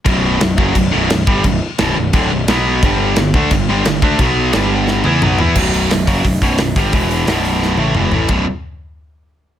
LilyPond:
<<
  \new Staff \with { instrumentName = "Distorted electric guitar" } { \clef bass \time 4/4 \key b \minor \tempo 4 = 175 <b,, fis, b,>4 <b,, fis,>8 <fis, cis fis>8 <b,, fis,>8 <b,, fis, b,>8 <b,, fis,>8 <g, d g>8 | <b,, fis,>8 r8 <b,, fis, b,>8 <b,, fis,>8 <d, a, d>8 <b,, fis,>8 <b, fis b>4 | <g, d g>4 <g, d>8 <d a d'>8 <g, d>8 <g, d g>8 <g, d>8 <d a d'>8 | <b, fis b>4 <g, d g>4. <e b e'>8 <b, fis b>8 <e b e'>8 |
<b,, fis, b,>4 <b,, fis,>8 <fis, cis fis>8 <b,, fis,>8 <b,, fis, b,>8 <b,, fis,>8 <g, d g>8 | <e, b, e>4 <b,, fis, b,>4. <a, e a>8 <e, b, e>8 <a, e a>8 | <b,, fis, b,>8 r2. r8 | }
  \new Staff \with { instrumentName = "Picked electric bass" } { \clef bass \time 4/4 \key b \minor b,,,4 b,,,8 fis,,8 b,,,8 b,,,8 b,,,8 g,,8 | b,,,8 r8 b,,,8 b,,,8 d,,8 b,,,8 b,,4 | g,,4 g,,8 d,8 g,,8 g,,8 g,,8 d,8 | b,,4 g,,4. e,8 b,,8 e,8 |
b,,,4 b,,,8 fis,,8 b,,,8 b,,,8 b,,,8 g,,8 | e,,4 b,,,4. a,,8 e,,8 a,,8 | b,,,8 r2. r8 | }
  \new DrumStaff \with { instrumentName = "Drums" } \drummode { \time 4/4 <cymc bd>4 <cymc sn>8 bd8 <cymc bd>4 <cymc sn>8 bd8 | <cymc bd>4 <cymc sn>4 <cymc bd>4 <cymc sn>4 | <cymc bd>4 <cymc sn>8 bd8 <cymc bd>4 <cymc sn>8 bd8 | <cymc bd>4 <cymc sn>4 sn8 tommh8 toml8 tomfh8 |
<cymc bd>8 hho8 <hho sn>8 <hho bd>8 <hho bd>8 <hho bd>8 <hho sn>8 <hho bd>8 | <hho bd>8 hho8 <hho sn>8 hho8 sn8 tommh8 toml8 tomfh8 | <bd rb>4 r4 r4 r4 | }
>>